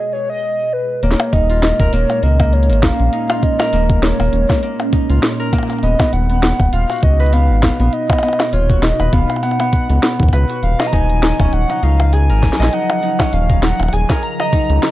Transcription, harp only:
Already playing: G#4 C#5 D#5 G#5
1.03 A#3
1.33 D#4
1.50 F4
1.80 A#4
1.93 A#3
2.23 A#3
2.40 A#3
2.70 A#3
2.83 A#3
3.13 D#4
3.30 F4
3.60 A#4
3.73 A#3
4.03 A#3
4.20 A#3
4.50 A#3
4.63 A#3
4.93 D#4
5.10 F4
5.40 A#4
5.53 A#3
5.83 B3
6.00 B3
6.30 B3
6.43 B3
6.73 F4
6.90 F#4
7.20 B4
7.33 B3
7.63 B3
7.80 B3
8.10 B3
8.23 B3
8.53 F4
8.70 F#4
9.00 B4
9.13 B3
9.43 B3
9.60 B3
9.90 B3
10.03 B3
10.33 B4
10.50 F#4
10.80 D#5
10.93 D#4
11.23 D#4
11.40 C#4
11.70 D#4
11.83 D#4
12.13 G#4
12.30 A#4
12.60 D#5
12.73 D#4
13.03 D#4
13.20 C#4
13.50 D#4
13.63 D#4
13.93 G#4
14.10 A#4
14.40 D#5
14.53 D#4
14.83 D#4

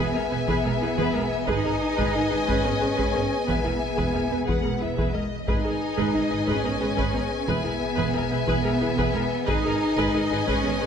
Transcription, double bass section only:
0.14 E1
0.32 E1
0.48 E1
0.65 E1
0.82 E1
0.98 E1
1.15 E1
1.49 G#1
1.65 G#1
1.99 G#1
2.16 G#1
2.33 G#1
2.49 G#1
2.65 G#1
2.82 G#1
2.99 G#1
3.16 G#1
3.49 E1
3.66 E1
3.99 E1
4.16 E1
4.33 E1
4.49 E1
4.66 E1
4.83 E1
4.99 E1
5.16 E1
5.49 G#1
5.66 G#1
5.99 G#1
6.15 G#1
6.31 G#1
6.48 G#1
6.65 G#1
6.82 G#1
6.98 G#1
7.15 G#1
7.48 E1
7.65 E1
7.98 E1
8.15 E1
8.31 E1
8.47 E1
8.64 E1
8.80 E1
8.97 E1
9.14 E1
9.47 G#1
9.64 G#1
9.98 G#1
10.14 G#1
10.31 G#1
10.49 G#1
10.66 G#1
10.82 G#1

